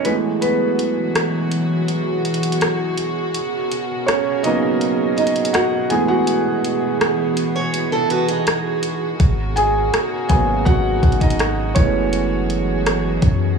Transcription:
0.05 string section B2 E3 F#3 F#4 G#4, felt piano E3 G#3 A3 B3 B4, closed hi-hat
0.41 felt piano B3 B4, closed hi-hat
0.79 closed hi-hat
1.15 cross-stick, closed hi-hat
1.51 closed hi-hat
1.88 closed hi-hat
2.25 closed hi-hat
2.34 closed hi-hat
2.43 closed hi-hat
2.52 closed hi-hat
2.61 cross-stick, closed hi-hat
2.97 closed hi-hat
3.34 string section C#3 A#4, closed hi-hat
3.71 closed hi-hat
4.06 felt piano C#4 C#5, cross-stick, closed hi-hat
4.43 felt piano C#3 F#3 A#3 B3 D#4 D#5, closed hi-hat
4.81 closed hi-hat
5.16 felt piano D#4 D#5, closed hi-hat
5.27 closed hi-hat
5.36 closed hi-hat
5.45 closed hi-hat
5.53 felt piano F#4 F#5, cross-stick, closed hi-hat
5.90 felt piano E3 G#3 A3 B3 G#4 G#5, string section E3 B3 F#4, closed hi-hat
6.08 felt piano F#4 F#5
6.27 closed hi-hat
6.64 closed hi-hat
7.01 cross-stick, closed hi-hat
7.37 closed hi-hat
7.56 steel-string acoustic guitar G#4 C#5
7.74 closed hi-hat
7.92 steel-string acoustic guitar E4 A4
8.10 steel-string acoustic guitar F#4 B4, closed hi-hat
8.28 steel-string acoustic guitar D#4 G#4, closed hi-hat
8.47 cross-stick, closed hi-hat
8.83 closed hi-hat
9.20 808-style bass G#1, string section C#3 A#4, kick, closed hi-hat
9.56 felt piano G#4 G#5, closed hi-hat
9.94 cross-stick, closed hi-hat
10.29 808-style bass G#1, felt piano C#3 F#3 A#3 B3 G#4 G#5, kick, closed hi-hat
10.65 808-style bass G#1, felt piano F#4 F#5, kick, closed hi-hat
11.03 808-style bass G#1, kick, closed hi-hat
11.12 closed hi-hat
11.20 felt piano D#4 D#5, kick, closed hi-hat
11.30 closed hi-hat
11.39 cross-stick, closed hi-hat
11.75 808-style bass F#1, string section B2 E3 F#3 G#4, felt piano E3 G#3 A3 B3 C#4 C#5, kick, closed hi-hat
12.13 closed hi-hat
12.50 closed hi-hat
12.86 cross-stick, closed hi-hat
13.22 808-style bass F#2, kick, closed hi-hat

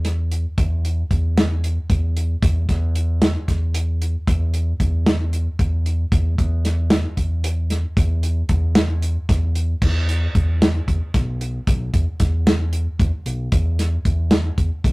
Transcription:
Already playing: fingered electric bass E2
0.05 snare, closed hi-hat
0.32 closed hi-hat
0.58 fingered electric bass E2, kick, closed hi-hat
0.85 closed hi-hat
1.11 fingered electric bass E2, kick, closed hi-hat
1.38 snare, closed hi-hat
1.64 closed hi-hat
1.90 fingered electric bass E2, kick, closed hi-hat
2.17 closed hi-hat
2.42 fingered electric bass E2, kick, closed hi-hat
2.69 fingered electric bass E2, kick, snare, closed hi-hat
2.95 closed hi-hat
3.22 snare, closed hi-hat
3.48 fingered electric bass E2, kick, snare, closed hi-hat
3.74 closed hi-hat
4.02 closed hi-hat
4.27 fingered electric bass E2, kick, closed hi-hat
4.54 closed hi-hat
4.80 fingered electric bass E2, kick, closed hi-hat
5.06 snare, closed hi-hat
5.33 closed hi-hat
5.59 fingered electric bass E2, kick, closed hi-hat
5.86 closed hi-hat
6.12 fingered electric bass E2, kick, closed hi-hat
6.38 fingered electric bass E2, kick, closed hi-hat
6.65 snare, closed hi-hat
6.90 snare, closed hi-hat
7.17 fingered electric bass E2, kick, closed hi-hat
7.44 closed hi-hat
7.70 snare, closed hi-hat
7.97 fingered electric bass E2, kick, closed hi-hat
8.23 closed hi-hat
8.49 fingered electric bass E2, kick, closed hi-hat
8.75 snare, closed hi-hat
9.02 closed hi-hat
9.29 fingered electric bass E2, kick, snare, closed hi-hat
9.55 closed hi-hat
9.82 fingered electric bass E2, kick, crash
10.09 closed hi-hat
10.35 fingered electric bass E2, kick, closed hi-hat
10.62 snare, closed hi-hat
10.88 fingered electric bass E2, kick, closed hi-hat
11.14 fingered electric bass B1, kick, snare, closed hi-hat
11.41 closed hi-hat
11.67 fingered electric bass B1, kick, closed hi-hat
11.93 fingered electric bass E2, kick, closed hi-hat
12.20 fingered electric bass E2, kick, snare, closed hi-hat
12.47 snare, closed hi-hat
12.73 closed hi-hat
12.99 fingered electric bass E2, kick, closed hi-hat
13.26 fingered electric bass B1, closed hi-hat
13.52 fingered electric bass E2, kick, closed hi-hat
13.79 snare, closed hi-hat
14.05 fingered electric bass E2, kick, closed hi-hat
14.31 snare, closed hi-hat
14.58 fingered electric bass E2, kick, closed hi-hat
14.84 fingered electric bass B1, kick, closed hi-hat

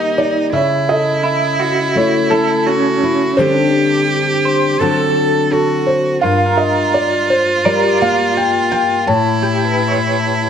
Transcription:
Already playing: steel-string acoustic guitar D#3 G3 A#3 D#4 G4, cello D#4, clean electric guitar D#4, felt piano D#5
0.18 steel-string acoustic guitar D#4, felt piano D5
0.52 steel-string acoustic guitar C#3, cello E4, felt piano C#5 E5
0.89 felt piano A4 D#5
1.23 clean electric guitar E4
1.60 clean electric guitar F#4
1.95 steel-string acoustic guitar A3, felt piano E4 C#5
2.30 steel-string acoustic guitar C#4 E4, felt piano A4, clean electric guitar A4
2.66 clean electric guitar C#4, cello F#4
3.03 steel-string acoustic guitar E4
3.37 steel-string acoustic guitar D3 G3 C4 D4 G4, felt piano G4 C5, cello G4
4.45 clean electric guitar C5
4.79 steel-string acoustic guitar D3 F#3 C4 F#4 A4, cello A4, clean electric guitar A4
5.51 cello F#4, felt piano A4
5.86 felt piano C5
6.21 steel-string acoustic guitar G2, cello F4, clean electric guitar F4, felt piano A#4 F5
6.46 clean electric guitar A#4
6.57 felt piano D#5
6.94 felt piano D5
7.30 felt piano C5
7.65 steel-string acoustic guitar G3, clean electric guitar A#4, felt piano A#4 D5
7.87 clean electric guitar D5
8.01 steel-string acoustic guitar A#3 F4 A#4, felt piano F5
8.37 felt piano G5
8.72 steel-string acoustic guitar F4, felt piano G5
9.07 steel-string acoustic guitar A2, cello E4, felt piano C#5 A5
9.43 clean electric guitar G4
9.65 clean electric guitar B4
9.88 clean electric guitar C#5

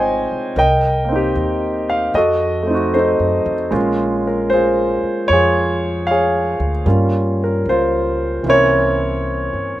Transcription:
Already playing: upright bass G#1, grand piano C3 G#3 C4 D#4 F4 G#4 C5 C#5 D#5 F5 G5 G#5
0.31 muted upright bass stroke
0.56 upright bass C2, grand piano A#4 D#5 G5
1.05 grand piano A#3 C4
1.12 grand piano D#4 G4
1.35 upright bass D#2
1.89 grand piano F5
2.14 upright bass F2, grand piano F#4 A4 D#5
2.63 grand piano A3 C4
2.70 grand piano D#4 F#4
2.94 grand piano D#4 A4 C5
3.20 upright bass F#2
3.46 upright bass F2
3.71 upright bass A#1, grand piano G#3 A#3 C#4 F4
4.27 grand piano A#4
4.50 grand piano C5
4.54 grand piano F4 G#4
5.03 muted upright bass stroke
5.28 upright bass F2, grand piano C#5
5.33 grand piano F4 G#4
6.07 grand piano F5
6.11 grand piano G#4 C#5
6.60 upright bass D2
6.86 upright bass G2, grand piano G3 A#3 C#4 F4
7.44 grand piano A#4
7.66 upright bass C#2, grand piano C5
7.70 grand piano F4
8.43 upright bass C2, grand piano E3 A#3 C#4
8.48 grand piano C4 E4 A#4 C#5
9.54 upright bass G2

